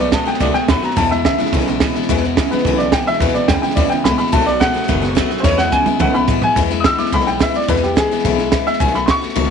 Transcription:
Already playing: B1 B2 F#3
0.00 A3 B3 F#4 D5
0.12 B2 D#3 G#3 A3 B3 F#4 A5, kick, snare, hi-hat pedal
0.26 A3 B3 F#4 G5, muted upright bass stroke, snare
0.34 snare
0.40 C#2 B2 D#3 G#3 A3 B3 F#4 D5, kick, snare
0.54 A3 B3 F#4 G5, muted upright bass stroke, snare
0.68 D#2 B2 D#3 F#3 A3 B3 F#4 B5, kick, snare, hi-hat pedal
0.82 A3 B3 F#4 A#5, muted upright bass stroke, snare
0.90 snare
0.96 E2 B2 E3 G#3 B3 E4 A5, kick, snare
1.11 E3 G#3 B3 E4 E5, snare
1.24 E2 C#3 E3 G#3 B3 E4 E5, kick, snare, hi-hat pedal
1.38 E3 G#3 B3 E4, muted upright bass stroke, snare
1.46 snare
1.52 B1 E2 B2 C#3 E3 G#3 B3 E4, kick, snare
1.59 snare
1.66 E3 G#3 B3 E4, snare
1.80 E2 B2 E3 G#3 B3 E4, kick, snare, hi-hat pedal
1.95 E3 G#3 B3 E4, muted upright bass stroke, snare
2.02 snare
2.09 E2 B2 E3 G#3 B3 E4, kick, snare
2.17 snare
2.24 E3 G#3 B3 E4, snare
2.36 E2 C#3 E3 G#3 B3 E4, kick, snare, hi-hat pedal
2.51 E3 G#3 B3 E4 B4, muted upright bass stroke, snare
2.58 snare
2.64 B1 E2 B2 C#3 E3 G#3 B3 E4, kick, snare
2.78 G#3 B3 E4 D5, snare
2.82 E3
2.92 E2 B2 E3 G#3 B3 G5, kick, snare, hi-hat pedal
2.96 E4
3.06 E3 G#3 B3 E4 E5, muted upright bass stroke, snare
3.13 snare
3.20 E2 B2 E3 G#3 B3 E4 B4, kick, snare
3.28 snare
3.34 E3 G#3 B3 E4 D5, muted upright bass stroke, snare
3.48 E2 C#3 E3 G#3 B3 E4 G5, kick, snare, hi-hat pedal
3.62 E3 G#3 B3 E4 G5, muted upright bass stroke, snare
3.70 snare
3.75 D#2 E2 B2 C#3 E3 G#3 B3 E4 D5, kick, snare
3.90 E3 G#3 B3 E4 G5, muted upright bass stroke, snare
4.04 C#2 E2 B2 E3 G#3 B3 E4 B5, kick, snare, hi-hat pedal
4.17 E3 G#3 B3 E4 B5, muted upright bass stroke, snare
4.27 snare
4.32 B1 B2 D#3 F#3 A3 B3 F#4 A5, kick, snare
4.40 snare
4.46 A3 B3 F#4 D5, snare
4.60 B2 D#3 G#3 A3 B3 F#4 F#5, kick, snare, hi-hat pedal
4.74 A3 B3 F#4, muted upright bass stroke, snare
4.83 snare
4.88 F#1 B2 D#3 G#3 A3 B3 F#4, kick, snare
5.02 A3 B3 F#4, snare
5.15 B2 D#3 F#3 A3 B3 F#4, kick, snare, hi-hat pedal
5.30 A3 B3 F#4, muted upright bass stroke, snare
5.37 C5, snare
5.43 E2 B2 E3 G#3 B3 E4 C#5, kick, snare
5.57 E3 G#3 B3 E4 F#5, snare
5.72 E2 C#3 E3 G#3 B3 E4 G#5, kick, hi-hat pedal
5.86 E3 G#3 B3 E4, muted upright bass stroke, high tom
5.99 B1 E2 B2 C#3 E3 G#3 B3 E4 F#5, kick, mid tom
6.14 E3 G#3 B3 E4 B5
6.28 E2 B2 E3 G#3 B3 E4, kick, floor tom, hi-hat pedal
6.42 E3 G#3 B3 E4 G#5, muted upright bass stroke, floor tom
6.56 E2 B2 E3 G#3 B3 E4, kick, snare
6.70 E3 G#3 B3 E4, snare
6.80 D#6
6.84 E3 G#3 B3 E4 E6, kick, snare, hi-hat pedal
6.98 E3 G#3 B3 E4 D6, muted upright bass stroke, snare
7.05 snare
7.12 B1 E2 B2 E3 G#3 B3 E4 B5, kick, snare
7.20 snare
7.26 E3 G#3 B3 E4 G5, snare
7.39 E3 G#3 B3 E4 E5, kick, snare, hi-hat pedal
7.54 E3 G#3 B3 E4 D5, muted upright bass stroke, snare
7.61 snare
7.68 E2 B2 E3 G#3 B3 E4 B4, kick, snare
7.76 snare
7.83 E3 G#3 B3 E4 G4, snare
7.95 E3 G#3 B3 E4 G#4, kick, snare, hi-hat pedal
8.10 E3 G#3 B3 E4, muted upright bass stroke, snare
8.19 snare
8.24 B1 E2 B2 E3 G#3 B3 E4, kick, snare
8.38 E3 G#3 B3 E4, snare
8.52 E3 G#3 B3 E4, kick, snare, hi-hat pedal
8.66 E3 G#3 B3 E4 E5, muted upright bass stroke, snare
8.73 snare
8.80 B1 B2 D#3 A3 B3 F#4 G#5, kick, snare
8.87 snare
8.94 A3 B3 F#4 B5, snare
9.06 D#3 A3 B3 F#4 C6, kick, snare, hi-hat pedal
9.10 C#6
9.21 A3 B3 F#4, muted upright bass stroke, snare
9.29 snare
9.36 C#2 B2 D#3 A3 B3 F#4, kick, snare
9.43 snare

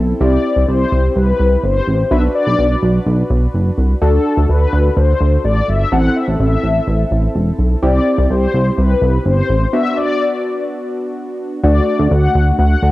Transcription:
Already playing: B1 C4 E4 A4
0.21 C2 C4 E4 G4 D5
0.56 C2
0.68 C2 C5
0.92 C2
1.16 C2 B4
1.40 C2
1.64 G1 C5
1.87 A1
2.11 B1 D4 F#4 B4 E5
2.35 D5
2.47 B1
2.59 B1
2.83 B1
3.06 B1
3.30 B1
3.54 F#1
3.78 C2
4.02 D2 D4 F#4 A4
4.37 D2
4.49 D2 B4
4.73 D2
4.97 D2 C5
5.21 D2
5.44 A1 D5
5.68 G1 E5
5.92 A1 C4 E4 A4 F#5
6.16 E5
6.28 A1
6.40 A1 E5
6.63 A1
6.87 A1
7.11 A1
7.35 E1
7.59 B1
7.82 C2 C4 E4 G4 D5
8.18 C2
8.30 C2 C5
8.54 C2
8.78 C2 B4
9.02 C2
9.26 G1 C5
9.49 A1
9.73 B3 D4 F#4 E5
9.97 D5
11.64 D2 A3 D4 F#4 D5
11.99 D2
12.11 D2 F#5
12.35 D2
12.59 D2 F#5
12.83 D2 A3 D4 F#4

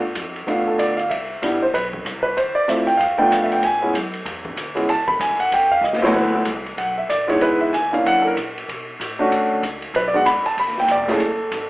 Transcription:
Already playing: G2
0.15 F2, kick, hi-hat pedal, ride
0.36 ride
0.47 E2 A3 B3 D4 F4 F5, kick, ride
0.68 A4
0.78 D2 D5, kick, hi-hat pedal, ride
0.97 F5, ride
1.10 C2 E5, kick, ride
1.42 A1 G3 B3 D4 E4, kick, hi-hat pedal, ride
1.62 C5
1.73 B1 B4, kick, ride
1.93 kick
2.05 C2, kick, hi-hat pedal, ride
2.23 B4
2.37 D2 C5, kick, ride
2.55 D5, muted upright bass stroke
2.68 F2 A3 C4 E4 F4 E5, kick, hi-hat pedal, ride
2.87 G5, ride
2.97 G2 F5, kick, ride
3.18 A3 B3 D4 F4 G5
3.31 F2 F5, kick, hi-hat pedal, ride
3.43 E5
3.51 G5, ride
3.62 A2 G#5, kick, ride
3.82 G#3 B3 C#4 E4
3.94 F#2, kick, hi-hat pedal, ride
4.14 ride
4.25 E2, kick, ride
4.45 kick
4.56 D2, kick, hi-hat pedal, ride
4.75 G#3 B3 C#4 E4, ride
4.88 C#2 A5, kick, ride
5.08 B5, kick
5.19 E2 G#5, kick, hi-hat pedal, ride
5.29 C#2
5.39 A1 F#5, ride
5.51 F2 G5, kick, ride
5.72 F5
5.81 C#2 D#5, hi-hat pedal
5.93 snare
6.02 D2 F#3 A3 B3 E4 C#5, snare
6.13 D2 B4, kick, crash
6.35 E4
6.45 C2, kick, hi-hat pedal, ride
6.66 ride
6.77 B1 F#5, kick, ride
6.98 E5
7.09 A1 D5, kick, hi-hat pedal, ride
7.28 G#3 B3 D#4 E4 C#5, ride
7.41 C#2 B4, kick, ride
7.61 E5
7.72 D#2 G#5, kick, hi-hat pedal, ride
7.92 A#3 C#4 D4 E4 F5, ride
8.05 F#2 F#5, kick, ride
8.22 A4
8.27 A#4
8.36 A#2, kick, hi-hat pedal, ride
8.58 ride
8.68 B2, kick, ride
9.00 A2, kick, hi-hat pedal, ride
9.19 A3 C#4 D4 F#4
9.31 D2, kick, ride
9.62 C#2, kick, hi-hat pedal, ride
9.82 ride
9.94 B1 B4, kick, ride
10.08 D5
10.13 G#3 B3 D4 F#4 F#5
10.25 G#1 B5, kick, hi-hat pedal, ride
10.44 A5, muted upright bass stroke, ride
10.57 G1 B5, kick, ride
10.68 snare
10.78 G5, snare
10.88 E1 D5, kick, hi-hat pedal, ride
11.08 A3 C#4 E4 G#4 A4, snare, ride
11.20 F#1, kick, ride
11.52 G#1, kick, hi-hat pedal, ride

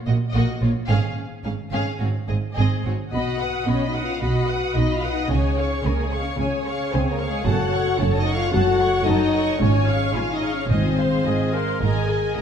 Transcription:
0.07 A#1 A#2 A#3 F#4 D#5
0.33 A#1 A#2 A#3 F#4 D#5
0.61 A#1 A#2 A#3 F4 C#5
0.88 G#1 G#2 C#4 G#4 F5
1.44 G#1 G#2 C#4 G#4 F5
1.72 G#1 G#2 C#4 G#4 F5
1.99 G#1 G#2 C4 F#4 C#5
2.28 G#1 G#2 C4 G#4 D#5
2.57 G#1 G#2 C4 G#4 D#5
2.85 G#1 G#2 C4 F#4 C#5
3.13 B1 B2 F#4 D#5 F#5 B5
3.41 B4 F#5 D#6
3.67 B1 B2 C#4 F#4 C#5 D#5 B5
3.87 D#4 D#5
3.95 B4 F#5 D#6
4.04 F4 F5
4.21 B1 B2 F#4 D#5 F#5 B5
4.49 B4 F#5 D#6
4.76 B1 B2 D#4 F#4 D#5 B5
4.94 F4 F5
5.03 B4 F#5 D#6
5.13 D#4 D#5
5.30 C#2 C#3 C#4 G#4 C#5 G#5
5.58 G#4 C#5 F5 C#6
5.84 C#2 C#3 A#3 G#4 A#4 C#5 G#5
6.02 G#3 G#4
6.12 G#4 C#5 F5 C#6
6.20 C#4 C#5
6.38 C#2 C#3 C#4 G#4 C#5 G#5
6.66 G#4 C#5 F5 C#6
6.91 C#2 C#3 C4 G#4 C5 C#5 G#5
7.10 A#3 A#4
7.18 G#4 C#5 F5 C#6
7.28 G#3 G#4
7.45 F#1 F#2 F#4 A4 C#5 F#5 A5
7.73 A4 C#5 F#5 C#6
7.99 F#1 F#2 C#4 A4 C#5 A5
8.17 D#4 D#5
8.26 A4 C#5 F#5 C#6
8.35 F4 F5
8.52 F#1 F#2 F#4 A4 C#5 F#5 A5
8.80 A4 C#5 F#5 C#6
9.06 F#1 F#2 D#4 A4 C#5 D#5 A5
9.34 A4 C#5 F#5 C#6
9.60 G#1 G#2 C#4 F4 C#5 G#5
9.88 G#4 F5 C#6
10.14 G#1 G#2 F4 C#5 F5 G#5
10.34 D#4 D#5
10.43 G#4 F5 C#6
10.54 C#4 C#5
10.69 G#1 G#2 C4 F4 C5 D#5 G#5
10.98 G#4 C5 F5 C6
11.25 G#1 G#2 F4 G#4 D#5 G#5
11.54 G#4 A#4 C5 F5 C6
11.81 G#1 G#2 G#4 A#4 D#5 G#5 A#5
12.08 G#4 A#4 D#5 G#5
12.36 G#1 G#2 D#4 A#4 D#5 A#5

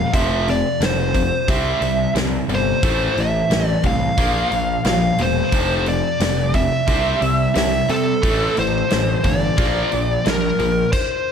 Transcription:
Already playing: A#2 F3 F5
0.14 F1 F2 C3 F3 E5, kick, open hi-hat
0.48 F2 C3 D5, open hi-hat
0.80 F1 F2 C3 C5, snare, open hi-hat
1.14 F2 C3, kick, open hi-hat
1.48 C2 C3 G3 C4 E5, kick, open hi-hat
1.81 C2 C3 G3, open hi-hat
2.14 C2 C3 G3, snare, open hi-hat
2.48 G1 C3 G3, open hi-hat
2.55 C5
2.83 A1 A2 E3 A3, kick, open hi-hat
3.17 A1 A2 E3 E5, open hi-hat
3.50 A1 A2 E3, snare, open hi-hat
3.67 D5
3.83 C2 A2 E3 F5, kick, open hi-hat
4.18 A#1 A#2 F3 A#3, kick, open hi-hat
4.52 A#1 A#2 F3, open hi-hat
4.85 A#1 A#2 F3 F5, snare, open hi-hat
5.18 E1 A#2 F3, open hi-hat
5.22 C5
5.51 F1 F2 C3 F3, kick, open hi-hat
5.86 F2 C3 D5, open hi-hat
6.20 F1 F2 C3, snare, open hi-hat
6.54 F2 C3 E5, kick, open hi-hat
6.88 C2 C3 G3 C4, kick, open hi-hat
7.21 C2 C3 G3, open hi-hat
7.54 C2 C3 G3 E5, snare, open hi-hat
7.89 C3 G3 A4, open hi-hat
8.23 A1 A2 E3 A3, kick, open hi-hat
8.57 A1 A2 E3 C5, open hi-hat
8.90 A1 A2 E3, snare, open hi-hat
9.24 G1 A2 E3 D5, kick, open hi-hat
9.57 A#1 A#2 F3 A#3, kick, open hi-hat
9.91 A#1 A#2 F3, open hi-hat
10.25 A#1 A#2 F3, snare, open hi-hat
10.30 A#4
10.59 A#1 A#2 F3, open hi-hat
10.92 C5, kick, crash

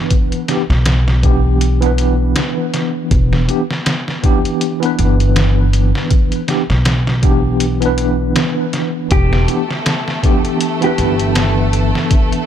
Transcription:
Already playing: E3 B3 D4 B4
0.10 kick, closed hi-hat
0.32 closed hi-hat
0.48 E3 B3 D4 G4, snare, closed hi-hat
0.70 B1, snare
0.86 snare, closed hi-hat
1.08 snare
1.23 E3 B3 D4 G4, kick, closed hi-hat
1.61 closed hi-hat
1.80 E3 B3 D4, closed hi-hat
1.86 B4
1.98 closed hi-hat
2.36 snare, closed hi-hat
2.74 snare, closed hi-hat
3.11 E1, kick, closed hi-hat
3.33 snare
3.48 E3 B3 D4 G4, closed hi-hat
3.71 snare
3.86 snare, closed hi-hat
4.08 snare
4.23 E3 B3 D4 G4, kick, closed hi-hat
4.45 closed hi-hat
4.61 closed hi-hat
4.80 E3 B3 D4, closed hi-hat
4.86 B4
4.99 G1, closed hi-hat
5.20 closed hi-hat
5.36 snare, closed hi-hat
5.73 closed hi-hat
5.95 snare
6.11 kick, closed hi-hat
6.32 closed hi-hat
6.48 E3 B3 D4 G4, snare, closed hi-hat
6.70 B1, snare
6.85 snare, closed hi-hat
7.07 snare
7.22 E3 B3 D4 G4, kick, closed hi-hat
7.60 closed hi-hat
7.80 E3 B3 D4, closed hi-hat
7.86 B4
7.98 closed hi-hat
8.36 snare, closed hi-hat
8.73 snare, closed hi-hat
9.11 E1 A3 G4 A4, kick, closed hi-hat
9.33 snare
9.47 E3 B3 D4 G4, closed hi-hat
9.71 snare
9.86 snare, closed hi-hat
10.08 snare
10.23 E3 B3 D4 G4, kick, closed hi-hat
10.45 closed hi-hat
10.61 closed hi-hat
10.81 E3 B3 D4 G4, closed hi-hat
10.86 B4
10.98 G1, closed hi-hat
11.20 closed hi-hat
11.35 snare, closed hi-hat
11.73 closed hi-hat
11.95 snare
12.11 kick, closed hi-hat
12.32 closed hi-hat

